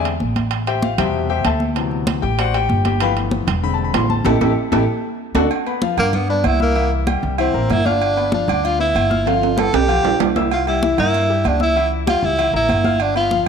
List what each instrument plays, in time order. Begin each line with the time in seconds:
Already playing: upright bass E2, grand piano G#3 C4
0.05 high conga, high timbale
0.20 upright bass A1, high conga
0.36 high conga, high timbale
0.51 high conga, high timbale
0.67 grand piano G4 C5 E5 G5, high conga, high timbale
0.82 grand piano F4 F5, high conga
0.98 upright bass E2, grand piano B2 C3 G3 G4 C5 E5 G5, high conga, low conga, high timbale
1.14 high conga
1.29 grand piano G4 C5 E5 G5, high conga
1.45 upright bass D2, grand piano A4 C5 E5 A5, high conga, high timbale
1.60 high conga
1.75 grand piano C3 E3 F#3 B3, high conga, high timbale
1.91 high conga
2.07 high conga, high timbale
2.22 upright bass A1, grand piano G4 G5, high conga
2.38 grand piano F#4 C5 D5 F#5, high conga, high timbale
2.54 grand piano G4 G5, high conga, high timbale
2.69 upright bass G1, high conga
2.85 grand piano G4 G5, high conga, high timbale
3.00 grand piano E3 F3 A3 B3 B4 F5 G5 B5, high timbale
3.17 high conga, high timbale
3.31 high conga
3.47 upright bass E1, high conga, low conga, high timbale
3.63 grand piano D3 G#3 C4 B5, high conga
3.74 grand piano A5
3.78 high conga
3.84 grand piano B5
3.94 upright bass A1, grand piano C6, high conga, high timbale, low timbale
4.10 grand piano A5, high conga
4.25 upright bass A1, grand piano E4 G4 A4, high conga, high timbale
4.40 upright bass A1, grand piano E4 G4 A4, high conga, high timbale
4.72 upright bass A1, grand piano E4 G4 A4, high conga, high timbale
5.35 upright bass D2, grand piano D4 F#4 A4, high conga, high timbale
5.51 high conga, low agogo
5.66 grand piano B3 B4 B5, high conga, low agogo
5.82 grand piano F3 F4 F5, high conga
5.97 upright bass G2, tenor saxophone A#3, grand piano D4 D5 D6, high conga, low conga, low agogo
6.13 tenor saxophone B3, high conga, low conga, low agogo
6.29 grand piano B3 B4 B5, tenor saxophone D4, high conga
6.44 upright bass C2, tenor saxophone E4, high conga, low agogo
6.60 tenor saxophone A#3, grand piano E4 E5 E6, high conga
6.75 grand piano E3 E4 E5, high conga, low agogo
6.91 high conga
7.07 grand piano G3 G4 G5, high conga, low agogo
7.22 upright bass C2, high conga
7.38 grand piano E3 E4 E5, tenor saxophone C4, high conga, low agogo
7.54 upright bass A1, grand piano A#3 A#4 A#5, high conga
7.70 upright bass G1, tenor saxophone E4, high conga, low timbale, low agogo
7.85 tenor saxophone D4, grand piano F4 F5 F6, high conga, low agogo
8.01 high conga, low agogo
8.16 grand piano B3 B4 B5, high conga, low agogo
8.32 grand piano F3 F4 F5, tenor saxophone D4, high conga
8.48 upright bass D2, grand piano D4 D5 D6, high conga, low conga, low agogo
8.64 tenor saxophone F4, high conga, low agogo
8.79 grand piano B3 B4 B5, tenor saxophone E4, high conga
8.95 upright bass G1, high conga, low agogo
9.10 grand piano F4 F5 F6, high conga
9.26 grand piano F3 F4 F5, tenor saxophone F4, high conga, high timbale, low agogo
9.42 high conga, high timbale
9.56 grand piano B3 B4 B5, tenor saxophone A4, high conga, low timbale, low agogo
9.73 upright bass B1, tenor saxophone G4, high conga, high timbale
9.88 grand piano F3 F4 F5, high conga, low agogo
10.03 upright bass B1, grand piano D4 D5 D6, high conga, low timbale
10.20 upright bass C2, high conga, low timbale, low agogo
10.36 grand piano E4 E5 E6, high conga, low timbale, low agogo
10.51 tenor saxophone F4, high conga, low agogo
10.67 grand piano G3 G4 G5, tenor saxophone E4, high conga, low agogo
10.83 grand piano E3 E4 E5, high conga
10.98 upright bass G2, grand piano A#3 A#4 A#5, tenor saxophone E4, high conga, low conga, low agogo
11.14 high conga, low agogo
11.29 grand piano G3 G4 G5, high conga
11.44 upright bass C#2, tenor saxophone D4, high conga, low agogo
11.60 grand piano E4 E5 E6, tenor saxophone E4, high conga
11.76 grand piano E3 E4 E5, high conga, low agogo
11.92 high conga
12.07 grand piano G3 G4 G5, tenor saxophone F4, high conga, low agogo
12.23 upright bass C#2, tenor saxophone E4, high conga
12.38 grand piano E3 E4 E5, high conga, low agogo
12.53 upright bass A1, grand piano A#3 A#4 A#5, tenor saxophone E4, high conga
12.69 upright bass G1, high conga, low agogo
12.84 grand piano F4 F5 F6, high conga, low agogo
13.00 tenor saxophone D4, high conga, low agogo
13.15 grand piano B3 B4 B5, tenor saxophone F4, high conga, low agogo
13.31 grand piano F3 F4 F5, high conga